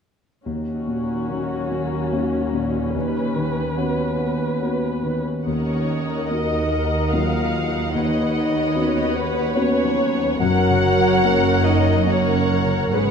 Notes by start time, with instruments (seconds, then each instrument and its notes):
0.45 grand piano D#2, cello section D#2, harp D#3, viola section C#4 F#4
0.74 harp D#4
0.87 grand piano A#2
1.02 harp A#3
1.29 harp F#3, grand piano A#3 C#4 F#4
1.58 harp C#5
1.71 grand piano A#3
1.86 harp A#4
2.12 grand piano A#3 C#4 F#4, harp C#4
2.41 harp A#3
2.53 grand piano A#2
2.68 harp D#4
2.95 grand piano D#2, harp D#3, viola section B4
3.23 harp D#4
3.36 grand piano D#3
3.50 harp B3
3.77 grand piano B3 C#4 F#4
4.05 harp C#5
4.19 grand piano B3
4.33 harp B4
4.61 grand piano B3 C#4 F#4
4.89 harp B3
5.03 grand piano D#3
5.17 harp D#4
5.46 cello section D#2, grand piano D#2, double bass section D#2, harp D#3, french horn C#4, viola section A#4 D#5, violin section C#5 F#5
5.75 harp D#4
6.03 harp A#3
6.31 grand piano A#3 D#4 F#4, french horn D#4, violin section D#5
6.58 harp D#5
6.86 harp A#4
7.12 grand piano F#3 A#3 D#4, french horn F4, harp D#5, violin section F5
7.67 harp D#4
7.95 grand piano D#2, harp D#3, french horn D#4, viola section B4 C#5, violin section D#5
8.21 harp D#4
8.48 harp B3
8.75 grand piano B3 C#4 F#4, harp F#4
9.02 harp C#5
9.16 french horn B3, violin section B4
9.29 harp B4
9.56 grand piano B3 C#4 F#4, french horn C#4, harp C#5, violin section C#5
9.84 harp F#3
10.13 harp D#4
10.40 double bass section F#1, grand piano F#2, harp F#2, cello section F#2, french horn F#4, viola section A#4 C#5, violin section F#5
10.69 harp C#3
10.97 harp A#3
11.24 grand piano A#3 C#4 F#4, harp C#4
11.53 harp C#5
11.65 french horn D#4, violin section D#5
11.79 harp A#4
12.06 grand piano A#3 C#4 F#4, french horn C#4, viola section A#4 C#5, harp C#5, violin section C#5 F#5
12.64 harp C#3
12.92 double bass section G#1, cello section G#2, grand piano G#2, harp G#2, french horn C#4, viola section G#4 B4, violin section C#5 F#5